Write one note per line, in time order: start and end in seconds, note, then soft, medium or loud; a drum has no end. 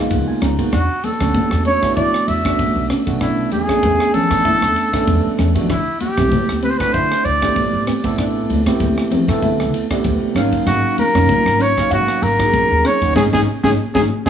0.00 0.53 G#3 medium
0.00 0.53 A#3 medium
0.00 0.54 B3 medium
0.00 0.14 D#4 medium
0.00 0.54 D#4 medium
0.00 0.54 F4 medium
0.10 0.24 C#2 medium
0.10 0.27 F#5 medium
0.10 kick medium
0.10 ride medium
0.10 high conga medium
0.28 0.41 G#5 medium
0.28 muted upright bass stroke soft
0.42 0.55 C#2 medium
0.42 0.59 C#4 medium
0.42 0.71 A#5 medium
0.42 cross-stick medium
0.42 ride medium
0.42 muted conga soft
0.58 0.72 G#3 medium
0.58 0.73 A#3 medium
0.58 0.73 B3 medium
0.58 0.73 D#4 medium
0.58 0.73 F#4 medium
0.58 kick medium
0.58 ride medium
0.72 0.86 E2 medium
0.72 0.90 D4 medium
0.72 1.05 F#4 medium
0.72 kick medium
0.72 cross-stick medium
0.72 ride medium
0.72 muted conga soft
1.04 1.65 A4 medium
1.04 muted upright bass stroke soft
1.04 ride medium
1.04 muted conga soft
1.04 high conga medium
1.20 1.32 D2 loud
1.20 1.77 A3 medium
1.20 1.78 B3 medium
1.20 1.78 C#4 medium
1.20 1.38 C#4 medium
1.20 1.78 D4 medium
1.20 1.78 F#4 medium
1.20 kick medium
1.20 cross-stick medium
1.20 ride medium
1.34 kick loud
1.34 ride medium
1.34 high conga medium
1.51 1.76 E2 medium
1.51 cross-stick medium
1.65 1.83 C#4 medium
1.65 1.95 C#5 medium
1.65 ride medium
1.82 2.39 A3 medium
1.82 2.39 B3 medium
1.82 2.40 D4 medium
1.82 2.40 E4 medium
1.82 2.40 F#4 medium
1.82 kick medium
1.82 cross-stick medium
1.82 ride medium
1.96 2.10 E3 medium
1.96 2.14 E4 medium
1.96 2.29 D5 medium
1.96 kick medium
1.96 ride soft
1.96 muted conga soft
2.14 cross-stick medium
2.28 2.52 E2 medium
2.28 2.90 E5 medium
2.28 ride medium
2.44 3.02 A3 medium
2.44 3.02 B3 medium
2.44 3.02 C#4 medium
2.44 2.62 D4 medium
2.44 3.02 D4 medium
2.44 3.03 F#4 medium
2.44 kick medium
2.44 cross-stick medium
2.44 ride medium
2.59 kick loud
2.59 ride medium
2.59 high conga medium
2.75 2.87 B1 medium
2.90 3.07 C#4 medium
2.90 muted upright bass stroke soft
2.90 cross-stick medium
2.90 ride medium
2.90 muted conga soft
3.06 3.42 B1 medium
3.06 3.63 A3 medium
3.06 3.64 B3 medium
3.06 3.64 C#4 medium
3.06 3.64 D4 medium
3.06 3.65 F#4 medium
3.06 kick medium
3.06 ride medium
3.21 3.38 D4 medium
3.21 3.50 E4 medium
3.21 kick medium
3.21 cross-stick medium
3.21 ride medium
3.21 muted conga soft
3.51 3.65 E2 medium
3.51 4.15 G#4 medium
3.51 ride medium
3.51 high conga medium
3.68 4.26 A3 medium
3.68 4.26 B3 medium
3.68 3.86 C#4 medium
3.68 4.26 C#4 medium
3.68 4.26 D4 medium
3.68 4.27 G#4 medium
3.68 kick medium
3.68 cross-stick medium
3.68 ride medium
3.83 3.96 E2 medium
3.83 kick loud
3.83 ride medium
3.83 high conga medium
4.00 cross-stick medium
4.13 4.31 C#4 medium
4.13 5.38 A4 loud
4.13 muted upright bass stroke soft
4.13 ride medium
4.13 low conga medium
4.30 4.63 E3 medium
4.30 4.88 A3 medium
4.30 4.88 B3 medium
4.30 4.88 C#4 medium
4.30 4.88 D4 medium
4.30 4.89 A4 medium
4.30 kick medium
4.30 cross-stick medium
4.30 ride medium
4.45 4.62 E4 medium
4.45 kick medium
4.45 ride medium
4.45 muted conga soft
4.45 high conga medium
4.62 4.73 E2 medium
4.62 cross-stick medium
4.76 ride medium
4.92 5.50 A3 medium
4.92 5.50 B3 medium
4.92 5.50 C#4 medium
4.92 5.10 D4 medium
4.92 5.51 D4 medium
4.92 5.51 A4 medium
4.92 muted upright bass stroke soft
4.92 kick medium
4.92 cross-stick medium
4.92 ride medium
5.07 5.21 E2 medium
5.07 kick loud
5.07 ride medium
5.07 high conga medium
5.24 muted upright bass stroke soft
5.24 high conga soft
5.38 5.52 E2 medium
5.38 5.55 C#4 medium
5.38 cross-stick medium
5.38 ride medium
5.38 low conga medium
5.55 5.69 A3 medium
5.55 5.70 B3 medium
5.55 5.70 C#4 medium
5.55 5.70 D4 medium
5.55 5.70 F#4 medium
5.55 kick medium
5.55 ride medium
5.55 low conga medium
5.69 5.83 D2 medium
5.69 5.86 D4 medium
5.69 5.99 E4 medium
5.69 kick medium
5.69 cross-stick medium
5.69 ride medium
5.69 muted conga soft
6.00 6.59 G4 medium
6.00 muted upright bass stroke soft
6.00 ride medium
6.00 muted conga soft
6.00 high conga medium
6.17 6.29 C2 medium
6.17 6.75 A3 medium
6.17 6.75 B3 medium
6.17 6.34 C4 medium
6.17 6.75 C4 medium
6.17 6.75 E4 medium
6.17 6.76 G4 medium
6.17 kick medium
6.17 cross-stick medium
6.17 ride medium
6.31 kick loud
6.31 ride medium
6.31 high conga medium
6.49 6.73 D2 medium
6.49 cross-stick medium
6.62 6.80 C4 medium
6.62 6.71 B4 medium
6.62 ride medium
6.70 6.79 C5 medium
6.77 7.37 A3 medium
6.77 7.37 C4 medium
6.77 7.37 D4 medium
6.77 7.37 E4 medium
6.77 7.38 F#4 medium
6.77 6.94 B4 medium
6.77 kick medium
6.77 cross-stick medium
6.77 ride medium
6.93 7.07 D3 medium
6.93 7.11 E4 medium
6.93 7.26 C5 medium
6.93 kick medium
6.93 ride medium
6.93 muted conga soft
7.12 cross-stick medium
7.25 7.49 D2 medium
7.25 7.87 D5 medium
7.25 ride soft
7.42 7.99 A3 medium
7.42 7.99 B3 medium
7.42 7.99 C4 medium
7.42 7.59 D4 medium
7.42 8.00 E4 medium
7.42 8.00 G4 medium
7.42 kick medium
7.42 cross-stick medium
7.42 ride medium
7.56 kick loud
7.56 ride medium
7.56 high conga medium
7.73 7.84 A1 medium
7.87 8.04 C4 medium
7.87 muted upright bass stroke soft
7.87 cross-stick medium
7.87 ride medium
7.87 muted conga soft
8.04 8.39 A1 medium
8.04 8.61 A3 medium
8.04 8.61 B3 medium
8.04 8.61 C4 medium
8.04 8.62 E4 medium
8.04 8.62 A4 loud
8.04 kick medium
8.04 ride medium
8.18 8.36 D4 medium
8.18 kick medium
8.18 cross-stick medium
8.18 ride medium
8.18 muted conga soft
8.49 8.63 D2 medium
8.49 ride medium
8.49 muted conga soft
8.49 high conga medium
8.66 9.23 A3 medium
8.66 9.23 B3 medium
8.66 9.24 C4 medium
8.66 8.84 C4 medium
8.66 9.24 E4 medium
8.66 9.24 G4 medium
8.66 kick medium
8.66 cross-stick medium
8.66 ride medium
8.80 8.94 D2 medium
8.80 kick loud
8.80 ride medium
8.80 high conga medium
8.98 cross-stick medium
9.11 9.28 C4 medium
9.11 muted upright bass stroke soft
9.11 ride medium
9.11 low conga medium
9.28 9.62 D3 medium
9.28 9.85 A3 medium
9.28 9.85 B3 medium
9.28 9.86 C4 medium
9.28 9.86 E4 medium
9.28 9.86 A4 loud
9.28 kick medium
9.28 cross-stick medium
9.28 ride medium
9.42 9.59 E4 medium
9.42 kick medium
9.42 ride medium
9.42 muted conga soft
9.42 high conga medium
9.60 9.71 D2 medium
9.60 cross-stick medium
9.74 ride medium
9.90 10.36 A3 medium
9.90 10.36 B3 medium
9.90 10.36 C4 medium
9.90 10.08 D4 medium
9.90 10.36 E4 medium
9.90 10.37 G4 medium
9.90 muted upright bass stroke soft
9.90 kick medium
9.90 cross-stick medium
9.90 ride medium
10.04 10.18 D2 medium
10.04 kick loud
10.04 ride medium
10.04 high conga medium
10.21 muted upright bass stroke soft
10.35 10.48 G#1 medium
10.35 11.08 F#3 medium
10.35 11.08 A#3 medium
10.35 10.53 C#4 medium
10.35 11.09 C#4 medium
10.35 11.09 D#4 medium
10.35 11.09 F5 loud
10.35 cross-stick medium
10.35 ride medium
10.35 muted conga soft
10.52 kick medium
10.52 ride medium
10.66 10.80 G#1 medium
10.66 10.84 D#4 medium
10.66 10.96 F#4 medium
10.66 kick medium
10.66 cross-stick medium
10.66 ride medium
10.66 muted conga soft
10.98 11.63 A#4 medium
10.98 muted upright bass stroke soft
10.98 ride medium
10.98 muted conga soft
10.98 high conga medium
11.15 11.26 F#1 medium
11.15 11.72 F#3 medium
11.15 11.72 A#3 medium
11.15 11.32 C#4 medium
11.15 11.73 C#4 medium
11.15 11.73 D#4 medium
11.15 11.73 F4 medium
11.15 kick medium
11.15 cross-stick medium
11.15 ride medium
11.29 kick loud
11.29 ride medium
11.29 high conga medium
11.46 11.70 G#1 medium
11.46 cross-stick medium
11.59 11.76 C#4 medium
11.59 11.92 C#5 loud
11.59 ride medium
11.77 12.34 F#3 medium
11.77 12.34 A#3 medium
11.77 12.35 C#4 medium
11.77 12.35 D#4 medium
11.77 12.35 F5 medium
11.77 kick medium
11.77 cross-stick medium
11.77 ride medium
11.91 12.04 G#2 medium
11.91 12.24 F#4 medium
11.91 12.08 F5 medium
11.91 kick medium
11.91 ride medium
12.08 cross-stick medium
12.22 12.46 G#1 medium
12.22 12.88 A#4 loud
12.22 ride medium
12.39 12.96 F#3 medium
12.39 12.96 A#3 medium
12.39 12.97 C#4 medium
12.39 12.56 D#4 medium
12.39 12.97 D#4 medium
12.39 12.97 G#4 medium
12.39 kick medium
12.39 cross-stick medium
12.39 ride medium
12.53 kick loud
12.53 ride medium
12.53 high conga medium
12.71 12.81 D#2 medium
12.84 13.01 C#4 medium
12.84 13.15 C#5 loud
12.84 muted upright bass stroke soft
12.84 cross-stick medium
12.84 ride medium
12.84 muted conga soft
13.01 13.13 D#2 medium
13.01 13.15 F#3 medium
13.01 13.16 A#3 medium
13.01 13.15 C#4 medium
13.01 13.15 D#4 medium
13.01 13.16 F#4 medium
13.01 kick medium
13.01 ride medium
13.16 13.28 G#1 medium
13.16 13.27 G#3 medium
13.16 13.27 C#4 medium
13.16 13.26 D#4 medium
13.16 13.27 D#4 medium
13.16 13.24 G#4 medium
13.16 kick medium
13.16 snare medium
13.16 high conga medium
13.33 13.43 G#1 medium
13.33 13.42 G#3 medium
13.33 13.42 C#4 medium
13.33 13.42 D#4 medium
13.33 13.40 G#4 medium
13.33 kick medium
13.33 snare medium
13.33 high conga medium
13.63 13.74 G#1 medium
13.63 13.73 G#3 medium
13.63 13.72 C#4 medium
13.63 13.73 C#4 medium
13.63 13.73 D#4 medium
13.63 13.70 G#4 medium
13.63 kick medium
13.63 snare medium
13.63 high conga loud
13.94 14.05 G#1 medium
13.94 14.04 G#3 medium
13.94 14.04 C#4 medium
13.94 14.04 D#4 medium
13.94 14.01 G#4 medium
13.94 kick medium
13.94 snare medium
13.94 high conga loud
14.26 14.30 G#1 medium
14.26 14.30 G#3 medium
14.26 14.30 C#4 medium
14.26 14.30 D#4 medium
14.26 14.30 G#4 medium
14.26 kick medium
14.26 snare medium
14.26 high conga medium